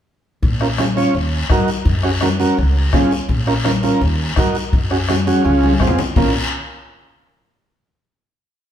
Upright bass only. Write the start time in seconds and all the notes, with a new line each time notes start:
0.43 A#1
1.14 D#2
1.50 F#2
1.85 F#2
2.58 C#2
2.93 F2
3.29 A#1
4.01 D#2
4.37 F#2
4.73 F#2
5.45 C#2
5.80 F2
6.16 A#1